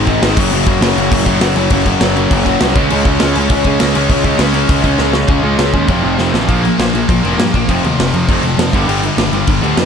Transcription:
Already playing: picked electric bass G#1, distorted electric guitar G#2 D#3 G#3
0.06 overdriven electric guitar G#2 D#3 G#3, kick, crash
0.22 picked electric bass G#1, overdriven electric guitar G#2 D#3 G#3, snare, crash
0.37 picked electric bass F#1, overdriven electric guitar F#2 C#3 F#3, kick, crash
0.52 picked electric bass F#1, overdriven electric guitar F#2 C#3 F#3, crash
0.66 picked electric bass F#1, overdriven electric guitar F#2 C#3 F#3, kick, crash
0.81 picked electric bass F#1, overdriven electric guitar F#2 C#3 F#3, snare, crash
0.96 picked electric bass F#1, overdriven electric guitar F#2 C#3 F#3, crash
1.12 picked electric bass F#1, overdriven electric guitar F#2 C#3 F#3, kick, crash
1.26 picked electric bass F#1, overdriven electric guitar F#2 C#3 F#3, kick, crash
1.41 picked electric bass F#1, overdriven electric guitar F#2 C#3 F#3, snare, crash
1.55 picked electric bass F#1, overdriven electric guitar F#2 C#3 F#3, crash
1.70 picked electric bass F#1, overdriven electric guitar F#2 C#3 F#3, kick, crash
1.86 overdriven electric guitar F#2 C#3 F#3, kick, crash
2.01 picked electric bass F#1, overdriven electric guitar F#2 C#3 F#3, snare, crash
2.16 overdriven electric guitar F#2 C#3 F#3, crash
2.31 picked electric bass F#1, overdriven electric guitar F#2 C#3 F#3, kick, crash
2.46 overdriven electric guitar F#2 C#3 F#3, kick, crash
2.60 picked electric bass C2, overdriven electric guitar F#2 C#3 F#3, snare, crash
2.76 picked electric bass C#2, overdriven electric guitar C#3 G#3 C#4, kick, crash
2.90 picked electric bass C#2, overdriven electric guitar C#3 G#3 C#4, crash
3.05 picked electric bass C#2, overdriven electric guitar C#3 G#3 C#4, kick, crash
3.20 picked electric bass C#2, overdriven electric guitar C#3 G#3 C#4, snare, crash
3.35 picked electric bass C#2, overdriven electric guitar C#3 G#3 C#4, crash
3.50 picked electric bass C#2, overdriven electric guitar C#3 G#3 C#4, kick, crash
3.64 picked electric bass C#2, overdriven electric guitar C#3 G#3, distorted electric guitar C#4, kick, crash
3.68 overdriven electric guitar C#4
3.80 picked electric bass C#2, overdriven electric guitar C#3 G#3 C#4, snare, crash
3.95 picked electric bass C#2, overdriven electric guitar C#3 G#3 C#4, crash
4.09 picked electric bass C#2, overdriven electric guitar C#3 G#3 C#4, kick, crash
4.24 overdriven electric guitar C#3 G#3 C#4, kick, crash
4.38 picked electric bass C#2, overdriven electric guitar C#3 G#3 C#4, snare, crash
4.53 overdriven electric guitar C#3 G#3 C#4, crash
4.67 picked electric bass C#2, overdriven electric guitar C#3 G#3 C#4, kick, crash
4.82 overdriven electric guitar C#3 G#3 C#4, kick, crash
4.87 distorted electric guitar C#3
4.98 picked electric bass C#2, overdriven electric guitar C#3 G#3 C#4, snare
5.13 overdriven electric guitar C#3 G#3 C#4, snare
5.28 picked electric bass C#2, overdriven electric guitar C#3 G#3 C#4, kick, crash
5.42 picked electric bass C#2, overdriven electric guitar C#3 G#3 C#4
5.58 picked electric bass C#2, overdriven electric guitar C#3 G#3 C#4, snare, crash
5.74 picked electric bass D#2, overdriven electric guitar C#3 G#3 C#4, kick
5.88 picked electric bass F1, overdriven electric guitar F2 C3 F3, kick, crash
6.04 picked electric bass F1, overdriven electric guitar F2 C3 F3
6.19 picked electric bass F1, overdriven electric guitar F2 C3 F3, snare
6.33 picked electric bass A1, overdriven electric guitar F2 C3 F3, snare
6.49 picked electric bass A#1, overdriven electric guitar A#2 F3 A#3, kick, crash
6.63 overdriven electric guitar A#2 F3, distorted electric guitar A#3, crash
6.78 picked electric bass A#1, overdriven electric guitar A#2 F3, distorted electric guitar A#3, snare, crash
6.94 picked electric bass A#1, overdriven electric guitar A#2 F3, distorted electric guitar A#3, crash
7.08 picked electric bass A#1, overdriven electric guitar A#2 F3, distorted electric guitar A#3, kick, crash
7.22 picked electric bass F1, overdriven electric guitar A#2 F3, distorted electric guitar A#3, crash
7.26 overdriven electric guitar A#3
7.38 picked electric bass G2, overdriven electric guitar A#2 F3, distorted electric guitar A#3, snare, crash
7.53 picked electric bass A#1, overdriven electric guitar A#2 F3, distorted electric guitar A#3, kick, crash
7.69 picked electric bass F1, overdriven electric guitar F2 C3 F3, kick, crash
7.83 picked electric bass D#2, overdriven electric guitar F2 C3, distorted electric guitar F3, crash
7.99 picked electric bass F1, overdriven electric guitar F2 C3, distorted electric guitar F3, snare, crash
8.13 picked electric bass F2, overdriven electric guitar F2 C3, distorted electric guitar F3, crash
8.28 picked electric bass F1, overdriven electric guitar F2 C3 F3, kick, crash
8.43 picked electric bass F1, overdriven electric guitar F2 C3, distorted electric guitar F3, crash
8.58 picked electric bass F2, overdriven electric guitar F2 C3, distorted electric guitar F3, snare, crash
8.73 picked electric bass G1, overdriven electric guitar G2 D3 G3, kick, crash
8.87 picked electric bass G1, overdriven electric guitar G2 D3 G3, crash
9.03 overdriven electric guitar G2 D3, distorted electric guitar G3, crash
9.17 picked electric bass G1, overdriven electric guitar G2 D3, distorted electric guitar G3, snare, crash
9.21 overdriven electric guitar D3
9.31 picked electric bass G1, overdriven electric guitar G2 D3, distorted electric guitar G3, crash
9.47 picked electric bass G1, overdriven electric guitar G2 D3, distorted electric guitar G3, kick, crash
9.61 picked electric bass D2, overdriven electric guitar G2 D3 G3, crash
9.77 picked electric bass F2, overdriven electric guitar G2 D3, distorted electric guitar G3, snare, crash

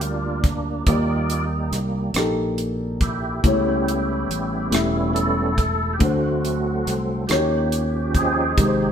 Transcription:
Already playing: fingered electric bass D2, upright piano G2 A#3 F4 G4 A#4 D5
0.01 tonewheel organ G3 A#3 D4 F4, closed hi-hat
0.44 kick, closed hi-hat
0.86 fingered electric bass D#2, upright piano D#3 A#3 D#4 G4 D5, tonewheel organ G3 A#3 D#4 F4 D5, kick, closed hi-hat
1.30 closed hi-hat
1.72 fingered electric bass C2, cross-stick, closed hi-hat
2.14 fingered electric bass A#1, upright piano A#3 D#4 G4 A4, cross-stick, closed hi-hat
2.58 closed hi-hat
3.01 tonewheel organ E4 G4, kick, closed hi-hat
3.44 fingered electric bass C#2, upright piano C#3 A3 E4 G4 C#5, tonewheel organ G3 B3 C#4, kick, closed hi-hat
3.88 closed hi-hat
4.29 fingered electric bass A1, closed hi-hat
4.71 fingered electric bass E1, upright piano A3 E4 G4 E5, tonewheel organ E4, cross-stick, closed hi-hat
5.13 tonewheel organ G3 B3 C#4 E4 A4, closed hi-hat
5.58 kick, closed hi-hat
5.93 tonewheel organ G4
5.99 fingered electric bass D2, upright piano D3 A3 D4 F#4 C5, tonewheel organ F#3 A3 C4 F#4, kick, closed hi-hat
6.45 closed hi-hat
6.86 fingered electric bass C2, cross-stick, closed hi-hat
7.27 fingered electric bass D#2, upright piano D#3 A#3 D#4 F#4, tonewheel organ F3 C#4 G4, closed hi-hat
7.31 upright piano C#5, cross-stick
7.37 upright piano G4
7.72 closed hi-hat
8.15 tonewheel organ C4 D#4 G#4, kick, closed hi-hat
8.56 fingered electric bass G#1, upright piano C3 G#3 D#4 G4 A#4, tonewheel organ A#3 C4 G4, kick, closed hi-hat
8.65 upright piano C5

